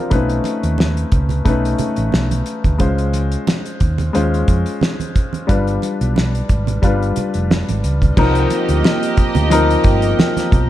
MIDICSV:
0, 0, Header, 1, 6, 480
1, 0, Start_track
1, 0, Tempo, 671141
1, 80, Time_signature, 4, 2, 24, 8
1, 7650, End_track
2, 0, Start_track
2, 0, Title_t, "String section"
2, 0, Program_c, 0, 48
2, 5841, Note_on_c, 0, 58, 72
2, 5841, Note_on_c, 0, 67, 76
2, 5841, Note_on_c, 0, 75, 84
2, 7650, Note_off_c, 0, 58, 0
2, 7650, Note_off_c, 0, 67, 0
2, 7650, Note_off_c, 0, 75, 0
2, 7650, End_track
3, 0, Start_track
3, 0, Title_t, "Grand piano"
3, 0, Program_c, 1, 0
3, 0, Control_c, 1, 64, 127
3, 0, Note_on_c, 1, 53, 72
3, 0, Note_on_c, 1, 60, 47
3, 0, Note_on_c, 1, 62, 65
3, 0, Note_on_c, 1, 63, 67
3, 0, Note_on_c, 1, 65, 57
3, 0, Note_on_c, 1, 67, 44
3, 0, Note_on_c, 1, 70, 67
3, 0, Note_on_c, 1, 72, 53
3, 73, Note_on_c, 1, 57, 70
3, 76, Note_on_c, 1, 61, 66
3, 83, Note_off_c, 1, 63, 0
3, 83, Note_on_c, 1, 63, 65
3, 87, Note_on_c, 1, 71, 79
3, 89, Control_c, 1, 64, 0
3, 90, Note_off_c, 1, 67, 0
3, 90, Note_off_c, 1, 72, 0
3, 92, Note_off_c, 1, 53, 0
3, 93, Note_off_c, 1, 62, 0
3, 96, Note_off_c, 1, 70, 0
3, 201, Note_off_c, 1, 65, 0
3, 205, Note_off_c, 1, 60, 0
3, 216, Control_c, 1, 64, 127
3, 666, Note_off_c, 1, 57, 0
3, 667, Note_off_c, 1, 61, 0
3, 671, Note_off_c, 1, 63, 0
3, 673, Note_off_c, 1, 71, 0
3, 1036, Note_on_c, 1, 57, 75
3, 1039, Note_on_c, 1, 61, 62
3, 1046, Note_on_c, 1, 63, 65
3, 1049, Note_on_c, 1, 71, 78
3, 1628, Note_off_c, 1, 57, 0
3, 1629, Note_off_c, 1, 61, 0
3, 1633, Note_off_c, 1, 63, 0
3, 1634, Note_off_c, 1, 71, 0
3, 1991, Note_on_c, 1, 56, 68
3, 1995, Note_on_c, 1, 61, 62
3, 2002, Note_on_c, 1, 65, 66
3, 2005, Note_on_c, 1, 72, 76
3, 2012, Control_c, 1, 64, 0
3, 2151, Control_c, 1, 64, 127
3, 2586, Note_off_c, 1, 56, 0
3, 2588, Note_off_c, 1, 61, 0
3, 2591, Note_off_c, 1, 65, 0
3, 2593, Note_off_c, 1, 72, 0
3, 2954, Note_on_c, 1, 56, 77
3, 2961, Note_on_c, 1, 61, 68
3, 2965, Note_on_c, 1, 65, 67
3, 2969, Note_on_c, 1, 72, 74
3, 3547, Note_off_c, 1, 56, 0
3, 3551, Note_off_c, 1, 61, 0
3, 3553, Note_off_c, 1, 65, 0
3, 3555, Note_off_c, 1, 72, 0
3, 3911, Note_on_c, 1, 55, 74
3, 3918, Note_on_c, 1, 62, 65
3, 3923, Note_on_c, 1, 65, 61
3, 3927, Note_on_c, 1, 71, 70
3, 3931, Control_c, 1, 64, 0
3, 4062, Control_c, 1, 64, 127
3, 4506, Note_off_c, 1, 55, 0
3, 4509, Note_off_c, 1, 62, 0
3, 4512, Note_off_c, 1, 65, 0
3, 4514, Note_off_c, 1, 71, 0
3, 4877, Note_on_c, 1, 55, 72
3, 4884, Note_on_c, 1, 62, 62
3, 4890, Note_on_c, 1, 65, 67
3, 4893, Note_on_c, 1, 71, 71
3, 5469, Note_off_c, 1, 55, 0
3, 5472, Note_off_c, 1, 62, 0
3, 5475, Note_off_c, 1, 65, 0
3, 5477, Note_off_c, 1, 71, 0
3, 5842, Note_on_c, 1, 53, 73
3, 5847, Note_on_c, 1, 60, 68
3, 5851, Note_on_c, 1, 63, 75
3, 5853, Control_c, 1, 64, 0
3, 5855, Note_on_c, 1, 70, 86
3, 5981, Control_c, 1, 64, 127
3, 6431, Note_off_c, 1, 53, 0
3, 6434, Note_off_c, 1, 60, 0
3, 6436, Note_off_c, 1, 63, 0
3, 6438, Note_off_c, 1, 70, 0
3, 6795, Note_on_c, 1, 53, 76
3, 6800, Note_on_c, 1, 60, 64
3, 6805, Note_on_c, 1, 63, 77
3, 6809, Note_on_c, 1, 70, 91
3, 7387, Note_off_c, 1, 53, 0
3, 7390, Note_off_c, 1, 60, 0
3, 7392, Note_off_c, 1, 63, 0
3, 7394, Note_off_c, 1, 70, 0
3, 7650, End_track
4, 0, Start_track
4, 0, Title_t, "Fingered electric bass"
4, 0, Program_c, 2, 33
4, 83, Note_on_c, 2, 35, 93
4, 277, Note_off_c, 2, 35, 0
4, 453, Note_on_c, 2, 39, 74
4, 738, Note_off_c, 2, 39, 0
4, 804, Note_on_c, 2, 37, 73
4, 998, Note_off_c, 2, 37, 0
4, 1043, Note_on_c, 2, 35, 89
4, 1238, Note_off_c, 2, 35, 0
4, 1414, Note_on_c, 2, 33, 78
4, 1502, Note_off_c, 2, 33, 0
4, 1529, Note_on_c, 2, 35, 80
4, 1721, Note_off_c, 2, 35, 0
4, 1896, Note_on_c, 2, 38, 74
4, 1984, Note_off_c, 2, 38, 0
4, 2007, Note_on_c, 2, 37, 91
4, 2396, Note_off_c, 2, 37, 0
4, 2725, Note_on_c, 2, 39, 75
4, 2919, Note_off_c, 2, 39, 0
4, 2973, Note_on_c, 2, 39, 88
4, 3164, Note_off_c, 2, 39, 0
4, 3208, Note_on_c, 2, 41, 66
4, 3311, Note_off_c, 2, 41, 0
4, 3929, Note_on_c, 2, 31, 99
4, 4122, Note_off_c, 2, 31, 0
4, 4298, Note_on_c, 2, 35, 77
4, 4581, Note_off_c, 2, 35, 0
4, 4647, Note_on_c, 2, 32, 88
4, 4841, Note_off_c, 2, 32, 0
4, 4887, Note_on_c, 2, 31, 87
4, 5081, Note_off_c, 2, 31, 0
4, 5257, Note_on_c, 2, 29, 68
4, 5450, Note_off_c, 2, 29, 0
4, 5497, Note_on_c, 2, 32, 87
4, 5585, Note_off_c, 2, 32, 0
4, 5607, Note_on_c, 2, 37, 69
4, 5801, Note_off_c, 2, 37, 0
4, 5846, Note_on_c, 2, 36, 109
4, 6040, Note_off_c, 2, 36, 0
4, 6214, Note_on_c, 2, 38, 82
4, 6304, Note_off_c, 2, 38, 0
4, 6689, Note_on_c, 2, 38, 90
4, 6975, Note_off_c, 2, 38, 0
4, 7043, Note_on_c, 2, 31, 80
4, 7238, Note_off_c, 2, 31, 0
4, 7528, Note_on_c, 2, 35, 74
4, 7650, Note_off_c, 2, 35, 0
4, 7650, End_track
5, 0, Start_track
5, 0, Title_t, "Muted fingered electric bass strokes"
5, 5125, Note_on_c, 9, 29, 40
5, 5197, Note_off_c, 9, 29, 0
5, 6564, Note_on_c, 9, 29, 49
5, 6636, Note_off_c, 9, 29, 0
5, 7650, End_track
6, 0, Start_track
6, 0, Title_t, "Drums"
6, 79, Note_on_c, 9, 62, 43
6, 80, Note_on_c, 9, 42, 84
6, 82, Note_on_c, 9, 36, 107
6, 150, Note_off_c, 9, 62, 0
6, 152, Note_off_c, 9, 42, 0
6, 154, Note_off_c, 9, 36, 0
6, 211, Note_on_c, 9, 42, 42
6, 282, Note_off_c, 9, 42, 0
6, 315, Note_on_c, 9, 62, 36
6, 323, Note_on_c, 9, 42, 74
6, 386, Note_off_c, 9, 62, 0
6, 394, Note_off_c, 9, 42, 0
6, 453, Note_on_c, 9, 42, 50
6, 525, Note_off_c, 9, 42, 0
6, 557, Note_on_c, 9, 63, 58
6, 574, Note_on_c, 9, 38, 103
6, 629, Note_off_c, 9, 63, 0
6, 645, Note_off_c, 9, 38, 0
6, 694, Note_on_c, 9, 42, 44
6, 765, Note_off_c, 9, 42, 0
6, 799, Note_on_c, 9, 42, 63
6, 802, Note_on_c, 9, 36, 83
6, 870, Note_off_c, 9, 42, 0
6, 874, Note_off_c, 9, 36, 0
6, 923, Note_on_c, 9, 64, 54
6, 932, Note_on_c, 9, 42, 44
6, 995, Note_off_c, 9, 64, 0
6, 1003, Note_off_c, 9, 42, 0
6, 1041, Note_on_c, 9, 36, 76
6, 1042, Note_on_c, 9, 42, 79
6, 1043, Note_on_c, 9, 62, 22
6, 1043, Note_on_c, 9, 64, 55
6, 1112, Note_off_c, 9, 36, 0
6, 1113, Note_off_c, 9, 42, 0
6, 1115, Note_off_c, 9, 62, 0
6, 1115, Note_off_c, 9, 64, 0
6, 1181, Note_on_c, 9, 42, 41
6, 1253, Note_off_c, 9, 42, 0
6, 1276, Note_on_c, 9, 42, 62
6, 1283, Note_on_c, 9, 64, 64
6, 1348, Note_off_c, 9, 42, 0
6, 1354, Note_off_c, 9, 64, 0
6, 1404, Note_on_c, 9, 42, 44
6, 1476, Note_off_c, 9, 42, 0
6, 1519, Note_on_c, 9, 63, 60
6, 1529, Note_on_c, 9, 38, 111
6, 1590, Note_off_c, 9, 63, 0
6, 1600, Note_off_c, 9, 38, 0
6, 1654, Note_on_c, 9, 42, 55
6, 1654, Note_on_c, 9, 63, 53
6, 1725, Note_off_c, 9, 42, 0
6, 1725, Note_off_c, 9, 63, 0
6, 1758, Note_on_c, 9, 42, 57
6, 1830, Note_off_c, 9, 42, 0
6, 1890, Note_on_c, 9, 63, 47
6, 1891, Note_on_c, 9, 36, 70
6, 1891, Note_on_c, 9, 42, 39
6, 1961, Note_off_c, 9, 63, 0
6, 1963, Note_off_c, 9, 36, 0
6, 1963, Note_off_c, 9, 42, 0
6, 1999, Note_on_c, 9, 42, 84
6, 2003, Note_on_c, 9, 36, 96
6, 2004, Note_on_c, 9, 62, 41
6, 2071, Note_off_c, 9, 42, 0
6, 2074, Note_off_c, 9, 36, 0
6, 2075, Note_off_c, 9, 62, 0
6, 2134, Note_on_c, 9, 42, 44
6, 2206, Note_off_c, 9, 42, 0
6, 2241, Note_on_c, 9, 62, 37
6, 2243, Note_on_c, 9, 42, 78
6, 2312, Note_off_c, 9, 62, 0
6, 2315, Note_off_c, 9, 42, 0
6, 2372, Note_on_c, 9, 42, 47
6, 2443, Note_off_c, 9, 42, 0
6, 2484, Note_on_c, 9, 63, 64
6, 2492, Note_on_c, 9, 38, 103
6, 2556, Note_off_c, 9, 63, 0
6, 2564, Note_off_c, 9, 38, 0
6, 2614, Note_on_c, 9, 42, 47
6, 2686, Note_off_c, 9, 42, 0
6, 2720, Note_on_c, 9, 42, 67
6, 2724, Note_on_c, 9, 36, 81
6, 2792, Note_off_c, 9, 42, 0
6, 2795, Note_off_c, 9, 36, 0
6, 2849, Note_on_c, 9, 64, 61
6, 2855, Note_on_c, 9, 42, 41
6, 2920, Note_off_c, 9, 64, 0
6, 2927, Note_off_c, 9, 42, 0
6, 2963, Note_on_c, 9, 62, 24
6, 2966, Note_on_c, 9, 42, 82
6, 3035, Note_off_c, 9, 62, 0
6, 3038, Note_off_c, 9, 42, 0
6, 3104, Note_on_c, 9, 42, 38
6, 3176, Note_off_c, 9, 42, 0
6, 3203, Note_on_c, 9, 42, 65
6, 3205, Note_on_c, 9, 36, 83
6, 3274, Note_off_c, 9, 42, 0
6, 3276, Note_off_c, 9, 36, 0
6, 3332, Note_on_c, 9, 42, 45
6, 3404, Note_off_c, 9, 42, 0
6, 3442, Note_on_c, 9, 63, 64
6, 3453, Note_on_c, 9, 38, 115
6, 3514, Note_off_c, 9, 63, 0
6, 3524, Note_off_c, 9, 38, 0
6, 3575, Note_on_c, 9, 63, 59
6, 3579, Note_on_c, 9, 42, 52
6, 3646, Note_off_c, 9, 63, 0
6, 3651, Note_off_c, 9, 42, 0
6, 3687, Note_on_c, 9, 42, 60
6, 3689, Note_on_c, 9, 36, 78
6, 3759, Note_off_c, 9, 42, 0
6, 3760, Note_off_c, 9, 36, 0
6, 3810, Note_on_c, 9, 63, 49
6, 3820, Note_on_c, 9, 42, 44
6, 3882, Note_off_c, 9, 63, 0
6, 3892, Note_off_c, 9, 42, 0
6, 3928, Note_on_c, 9, 36, 98
6, 3928, Note_on_c, 9, 42, 89
6, 3928, Note_on_c, 9, 62, 42
6, 3999, Note_off_c, 9, 36, 0
6, 3999, Note_off_c, 9, 62, 0
6, 4000, Note_off_c, 9, 42, 0
6, 4058, Note_on_c, 9, 42, 43
6, 4130, Note_off_c, 9, 42, 0
6, 4163, Note_on_c, 9, 62, 37
6, 4170, Note_on_c, 9, 42, 78
6, 4235, Note_off_c, 9, 62, 0
6, 4242, Note_off_c, 9, 42, 0
6, 4299, Note_on_c, 9, 42, 45
6, 4371, Note_off_c, 9, 42, 0
6, 4407, Note_on_c, 9, 63, 55
6, 4418, Note_on_c, 9, 38, 97
6, 4478, Note_off_c, 9, 63, 0
6, 4490, Note_off_c, 9, 38, 0
6, 4540, Note_on_c, 9, 42, 47
6, 4612, Note_off_c, 9, 42, 0
6, 4643, Note_on_c, 9, 42, 61
6, 4645, Note_on_c, 9, 36, 74
6, 4715, Note_off_c, 9, 42, 0
6, 4717, Note_off_c, 9, 36, 0
6, 4772, Note_on_c, 9, 64, 62
6, 4778, Note_on_c, 9, 42, 43
6, 4844, Note_off_c, 9, 64, 0
6, 4849, Note_off_c, 9, 42, 0
6, 4884, Note_on_c, 9, 36, 77
6, 4886, Note_on_c, 9, 42, 80
6, 4892, Note_on_c, 9, 62, 23
6, 4892, Note_on_c, 9, 64, 50
6, 4955, Note_off_c, 9, 36, 0
6, 4958, Note_off_c, 9, 42, 0
6, 4964, Note_off_c, 9, 62, 0
6, 4964, Note_off_c, 9, 64, 0
6, 5024, Note_on_c, 9, 42, 35
6, 5096, Note_off_c, 9, 42, 0
6, 5120, Note_on_c, 9, 42, 63
6, 5131, Note_on_c, 9, 64, 54
6, 5192, Note_off_c, 9, 42, 0
6, 5203, Note_off_c, 9, 64, 0
6, 5248, Note_on_c, 9, 42, 43
6, 5320, Note_off_c, 9, 42, 0
6, 5369, Note_on_c, 9, 63, 64
6, 5373, Note_on_c, 9, 38, 118
6, 5440, Note_off_c, 9, 63, 0
6, 5445, Note_off_c, 9, 38, 0
6, 5497, Note_on_c, 9, 42, 59
6, 5501, Note_on_c, 9, 63, 55
6, 5569, Note_off_c, 9, 42, 0
6, 5573, Note_off_c, 9, 63, 0
6, 5607, Note_on_c, 9, 42, 54
6, 5678, Note_off_c, 9, 42, 0
6, 5734, Note_on_c, 9, 36, 65
6, 5738, Note_on_c, 9, 42, 40
6, 5740, Note_on_c, 9, 63, 46
6, 5806, Note_off_c, 9, 36, 0
6, 5810, Note_off_c, 9, 42, 0
6, 5812, Note_off_c, 9, 63, 0
6, 5844, Note_on_c, 9, 36, 108
6, 5844, Note_on_c, 9, 49, 85
6, 5849, Note_on_c, 9, 62, 52
6, 5915, Note_off_c, 9, 49, 0
6, 5916, Note_off_c, 9, 36, 0
6, 5921, Note_off_c, 9, 62, 0
6, 5974, Note_on_c, 9, 42, 49
6, 6045, Note_off_c, 9, 42, 0
6, 6082, Note_on_c, 9, 42, 80
6, 6083, Note_on_c, 9, 62, 41
6, 6153, Note_off_c, 9, 42, 0
6, 6154, Note_off_c, 9, 62, 0
6, 6212, Note_on_c, 9, 42, 54
6, 6284, Note_off_c, 9, 42, 0
6, 6325, Note_on_c, 9, 63, 63
6, 6331, Note_on_c, 9, 38, 113
6, 6397, Note_off_c, 9, 63, 0
6, 6403, Note_off_c, 9, 38, 0
6, 6456, Note_on_c, 9, 42, 53
6, 6527, Note_off_c, 9, 42, 0
6, 6560, Note_on_c, 9, 42, 70
6, 6563, Note_on_c, 9, 36, 82
6, 6632, Note_off_c, 9, 42, 0
6, 6634, Note_off_c, 9, 36, 0
6, 6686, Note_on_c, 9, 64, 68
6, 6692, Note_on_c, 9, 42, 46
6, 6758, Note_off_c, 9, 64, 0
6, 6763, Note_off_c, 9, 42, 0
6, 6803, Note_on_c, 9, 42, 96
6, 6809, Note_on_c, 9, 62, 27
6, 6875, Note_off_c, 9, 42, 0
6, 6881, Note_off_c, 9, 62, 0
6, 6940, Note_on_c, 9, 42, 43
6, 7011, Note_off_c, 9, 42, 0
6, 7036, Note_on_c, 9, 42, 70
6, 7041, Note_on_c, 9, 36, 92
6, 7107, Note_off_c, 9, 42, 0
6, 7112, Note_off_c, 9, 36, 0
6, 7167, Note_on_c, 9, 42, 45
6, 7238, Note_off_c, 9, 42, 0
6, 7286, Note_on_c, 9, 63, 66
6, 7292, Note_on_c, 9, 38, 127
6, 7358, Note_off_c, 9, 63, 0
6, 7363, Note_off_c, 9, 38, 0
6, 7414, Note_on_c, 9, 63, 63
6, 7418, Note_on_c, 9, 42, 65
6, 7426, Note_on_c, 9, 38, 39
6, 7486, Note_off_c, 9, 63, 0
6, 7490, Note_off_c, 9, 42, 0
6, 7497, Note_off_c, 9, 38, 0
6, 7525, Note_on_c, 9, 36, 89
6, 7527, Note_on_c, 9, 42, 60
6, 7597, Note_off_c, 9, 36, 0
6, 7598, Note_off_c, 9, 42, 0
6, 7650, End_track
0, 0, End_of_file